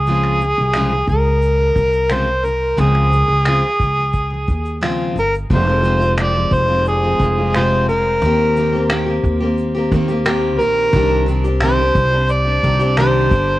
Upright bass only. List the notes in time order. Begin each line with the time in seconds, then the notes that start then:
Already playing: C#2
0.58 C2
1.07 C#2
1.76 C2
2.78 C#2
3.28 C#2
3.80 C#2
4.48 D#2
5.16 G1
5.50 F1
6.51 F1
7.19 F1
8.22 D#2
9.24 D#2
9.92 D#2
10.60 A#1
10.93 C2
11.95 C2
12.64 C2
13.31 G1